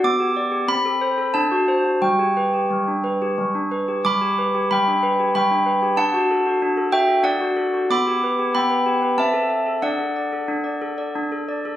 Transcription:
\new Staff \with { instrumentName = "Handbells" } { \time 3/4 \key g \major \tempo 4 = 92 << { d'''4 b''4 a''4 | g''2 r4 | <b'' d'''>4 <g'' b''>4 <g'' b''>4 | <fis'' a''>4. <e'' g''>8 <d'' fis''>4 |
<b'' d'''>4 <g'' b''>4 <e'' a''>4 | <d'' fis''>2 r4 | } \\ { b16 g'16 d''16 g'16 c'16 a'16 c''16 a'16 d'16 fis'16 c''16 fis'16 | g16 g'16 b'16 g'16 g16 d'16 b'16 g'16 g16 d'16 b'16 g'16 | g16 g'16 b'16 g'16 g16 d'16 b'16 g'16 g16 d'16 b'16 g'16 | d'16 fis'16 a'16 fis'16 d'16 a'16 fis'16 a'16 d'16 fis'16 a'16 fis'16 |
b16 g'16 b'16 g'16 b16 b'16 g'16 b'16 c'16 a'16 e''16 a'16 | d'16 a'16 d''16 a'16 d'16 d''16 a'16 d''16 d'16 a'16 d''16 a'16 | } >> }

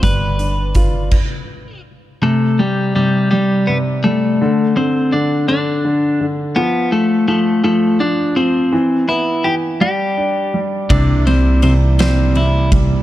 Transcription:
<<
  \new Staff \with { instrumentName = "Clean electric guitar" } { \time 6/8 \key c \major \tempo 4. = 55 b'2~ b'8 r8 | a8 g8 g8 g8 b8 a8~ | a8 c'8 d'8 d'4 r8 | b8 a8 a8 a8 d'8 c'8~ |
c'8 e'8 g'8 g'4 r8 | d'8 c'8 c'8 c'8 e'8 r8 | }
  \new Staff \with { instrumentName = "Tonewheel organ" } { \clef bass \time 6/8 \key c \major r2. | r2. | r2. | r2. |
r2. | <c e g bes e'>2. | }
  \new Staff \with { instrumentName = "Grand piano" } { \clef bass \time 6/8 \key c \major g8 d'8 f'8 r4. | c8 g8 c8 g8 c8 g8 | d8 d8 d8 d8 d8 d8 | f8 f8 f8 f8 f8 f8 |
e8 b8 e8 g8 d'8 g8 | c8 g8 c8 g8 c8 g8 | }
  \new Staff \with { instrumentName = "Upright bass" } { \clef bass \time 6/8 \key c \major g,,4. r4. | r2. | r2. | r2. |
r2. | c,2. | }
  \new DrumStaff \with { instrumentName = "Drums" } \drummode { \time 6/8 <hh bd>8 hh8 <hh bd>8 <cymc bd>4. | r4. r4. | r4. r4. | r4. r4. |
r4. r4. | <bd cymr>8 cymr8 cymr8 <cymr sn>8 cymr8 <bd cymr>8 | }
>>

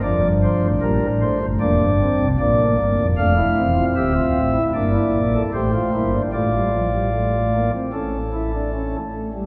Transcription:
<<
  \new Staff \with { instrumentName = "Pipe organ" } { \time 4/4 \key d \phrygian \tempo 4 = 76 << { d''8 c''8 bes'8 c''8 d''4 d''4 | \key d \minor f''4 e''4 d''4 c''4 | d''2 a'4. r8 | } \\ { d'2 d'4 bes4 | d'16 e'8 f'16 g'16 f'8 e'16 d'16 e'8 a'16 g'16 f'16 e'16 d'16 | f'2 r2 | } >> }
  \new Staff \with { instrumentName = "Pipe organ" } { \clef bass \time 4/4 \key d \phrygian << { f4 g8 a8 bes8 c'8 d'8 bes8 | \key d \minor a8 c'4. bes4 a8 bes8 | a16 g16 f16 g16 a8 bes16 c'16 cis'8 e'16 d'16 cis'8 a16 g16 | } \\ { <f,, f,>16 <g,, g,>8 <a,, a,>16 <bes,, bes,>16 <a,, a,>8 <g,, g,>16 <f,, f,>16 <g,, g,>8 <c, c>16 <bes,, bes,>16 <a,, a,>16 <g,, g,>16 <f,, f,>16 | <f,, f,>8 <e,, e,>8 <d,, d,>8 <a,, a,>8 <g,, g,>8 <bes,, bes,>8 <a,, a,>8 <g,, g,>8 | <a,, a,>2 <a,, a,>4. r8 | } >> }
>>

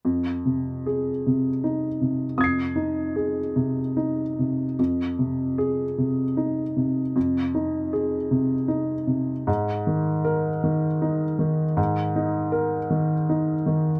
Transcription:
<<
  \new Staff \with { instrumentName = "Upright piano" } { \time 6/8 \key f \minor \tempo 4. = 52 r4 aes'4 r4 | <ees''' aes''' c''''>2. | r4 aes'4 r4 | r2. |
r4 bes'4 r4 | r2. | }
  \new Staff \with { instrumentName = "Upright piano" } { \clef bass \time 6/8 \key f \minor f,8 c4 c8 ees'8 c8 | f,8 ees'8 aes'8 c8 ees'8 c8 | f,8 c4 c8 ees'8 c8 | f,8 ees'8 aes'8 c8 ees'8 c8 |
aes,8 ees4 ees8 ees'8 ees8 | aes,8 ees'8 bes'8 ees8 ees'8 ees8 | }
>>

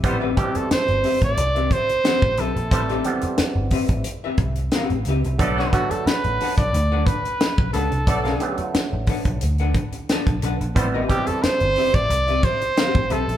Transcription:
<<
  \new Staff \with { instrumentName = "Hollow-body jazz guitar" } { \time 4/4 \key a \dorian \tempo 4 = 90 r16 <c' g' b' e''>16 r4 <c' g' b' e''>16 r8 <c' g' b' e''>16 r8 <c' g' b' fis''>16 r16 <c' g' b' e''>16 r16 | r16 <c' g' b' e''>16 r4 <c' g' b' e''>16 r8 <c' g' b' e''>16 r8 <c' g' b' fis''>16 r16 <c' g' b' e''>16 r16 | r16 <d' a' b' fis''>16 r4 <d' a' b' fis''>16 r8 <d' a' b' fis''>16 r4 <d' a' b' fis''>16 r16 | r16 <d' a' b' fis''>16 r4 <d' a' b' fis''>16 r8 <d' a' b' fis''>16 r8 <d' a' b' a''>16 r16 <d' a' b' fis''>16 r16 |
r16 <c' g' b' e''>16 r4 <c' g' b' e''>16 r8 <c' g' b' e''>16 r8 <c' g' b' fis''>16 r16 <c' g' b' e''>16 r16 | }
  \new Staff \with { instrumentName = "Trumpet" } { \time 4/4 \key a \dorian r8 g'16 a'16 c''8. d''8. c''4 a'8~ | a'4 r2. | r8 fis'16 a'16 b'8. d''8. b'4 a'8~ | a'4 r2. |
r8 g'16 a'16 c''8. d''8. c''4 a'8 | }
  \new Staff \with { instrumentName = "Horn section" } { \time 4/4 \key a \dorian <g e' c''>16 r2. r8. | <g e' c''>16 r2. r8. | <b a' d''>8. r2. r16 | <b a' d''>16 r2. r8. |
<g e' c''>16 r2. r8. | }
  \new Staff \with { instrumentName = "Clav" } { \clef bass \time 4/4 \key a \dorian <c e g b>8 <b, c e g>4. r2 | <c e g a>8 <c e g b>4. r2 | <d fis a b>8 <d fis a b>4. r2 | <d fis a b>8 <d fis a b>4. r2 |
<c e g b>8 <b, c e g>4. r2 | }
  \new Staff \with { instrumentName = "Picked electric bass" } { \clef bass \time 4/4 \key a \dorian a,,8 r8. g,,16 r16 a,,16 c,8 r8. a,,16 b,,16 bes,,16 | a,,8 r8. g,,16 r16 a,,16 r8 c,8 r16 a,,16 cis,16 c,16 | b,,8 r8. a,,16 r16 b,,16 d,8 r8. b,,16 cis,16 c,16 | b,,8 r8. a,,16 r16 b,,16 d,8 r8. b,,16 b,,16 bes,,16 |
a,,8 r8. g,,16 r16 a,,16 c,8 r8. a,,16 b,,16 bes,,16 | }
  \new DrumStaff \with { instrumentName = "Drums" } \drummode { \time 4/4 <hh bd>8 <hh bd>16 hh16 <hh sn>16 hh16 hho16 <hh bd>16 hh16 hh16 <hh bd>16 hh16 <hh sn>16 bd16 hh16 hh16 | <hh bd>16 hh16 hh16 hh16 <hh sn>8 <hho bd>16 <hh bd>16 hh8 <hh bd>16 hh16 <hh sn>16 hh16 hh16 hh16 | <hh bd>16 sn16 <hh bd>16 hh16 <hh sn>16 hh16 hho16 <hh bd>16 hh8 <hh bd>16 hh16 <hh sn>16 bd16 hh16 hh16 | <hh bd>16 <hh sn>16 hh16 hh16 <hh sn>8 <hho bd>16 <hh bd>16 hh16 hh16 <hh bd>16 hh16 <hh sn>16 <hh bd>16 hh16 hh16 |
<hh bd>8 <hh bd>16 hh16 <hh sn>16 hh16 hho16 <hh bd>16 hh16 hh16 <hh bd>16 hh16 <hh sn>16 bd16 hh16 hh16 | }
>>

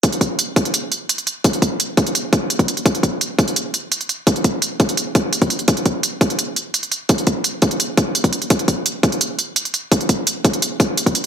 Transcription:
\new DrumStaff \with { instrumentName = "Drums" } \drummode { \time 4/4 \tempo 4 = 170 <hh bd>16 hh16 <hh bd>8 hh8 <hh bd>16 hh16 hh8 hh8 hh16 hh16 hh8 | <hh bd>16 hh16 <hh bd>8 hh8 <hh bd>16 hh16 hh8 <hh bd>8 hh16 <hh bd>16 hh16 hh16 | <hh bd>16 hh16 <hh bd>8 hh8 <hh bd>16 hh16 hh8 hh8 hh16 hh16 hh8 | <hh bd>16 hh16 <hh bd>8 hh8 <hh bd>16 hh16 hh8 <hh bd>8 hh16 <hh bd>16 hh16 hh16 |
<hh bd>16 hh16 <hh bd>8 hh8 <hh bd>16 hh16 hh8 hh8 hh16 hh16 hh8 | <hh bd>16 hh16 <hh bd>8 hh8 <hh bd>16 hh16 hh8 <hh bd>8 hh16 <hh bd>16 hh16 hh16 | <hh bd>16 hh16 <hh bd>8 hh8 <hh bd>16 hh16 hh8 hh8 hh16 hh16 hh8 | <hh bd>16 hh16 <hh bd>8 hh8 <hh bd>16 hh16 hh8 <hh bd>8 hh16 <hh bd>16 hh8 | }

